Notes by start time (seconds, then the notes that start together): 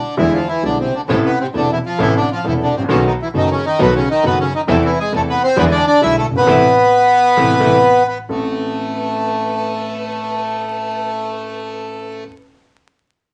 Already playing: D3 D4
0.17 E2 D3 E3 G#3 B3 E4
0.33 F3 F4
0.48 E3 E4
0.62 B1 B2 D3 G#3 B3 D4 E4
0.80 C3 C4
0.95 D3 D4
1.08 A1 A2 C3 A3 B3 C4 E4 A4
1.25 B3 B4
1.40 C3 C4
1.54 E1 E2 C3 D3 A3 B3 C4 D4 E4 A4
1.72 E3 E4
1.86 F3 F4
1.99 A1 A2 C3 E3 A3 B3 C4 E4 A4
2.16 D3 D4
2.32 F3 F4
2.44 E1 E2 C3 E3 A3 B3 C4 E4 A4
2.63 D3 D4
2.67 A1
2.73 G#1 C4
2.77 A1 C3
2.84 A#1
2.89 B1 B2 C#3 D#3 A3 B3 C#4 D#4 F#4 A4
3.07 D#3 D#4
3.22 E3 E4
3.34 F#1 F#2 D#3 A3 B3 D#4 F#4 A4
3.51 C#3 C#4
3.66 D#3 D#4
3.79 B1 B2 D#3 A3 B3 D#4 F#4 A4 B4
3.96 C#3 C#4
4.11 D#3 D#4
4.23 F#1 F#2 D#3 A3 B3 D#4 F#4 A4 B4
4.40 C#3 C#4
4.55 D#3 D#4
4.67 E2 C3 E3 A3 C4 E4 A4
4.85 E3 E4
5.00 G#3 G#4
5.12 E2 C3 E3 A3 C4 E4 A4
5.29 B3 B4
5.44 C4 C5
5.56 E2 D3 E3 G#3 B3 D4 E4 G#4 B4
5.71 D4 D5
5.87 D4 D5
6.01 B1 B2 D3 G#3 B3 D4 E4 G#4 E5
6.18 A3 A4
6.25 G1
6.30 F#1
6.36 G1 B3 B4
6.41 G#1
6.47 A1 C3 E3 A3 B3 C4 E4
7.37 A1 C3 E3 A3 B3 C4 E4
7.60 A1 C3 E3 A3 B3 C4 E4
8.08 B3 B4
8.29 A1 A3 B3 C4 A4 B4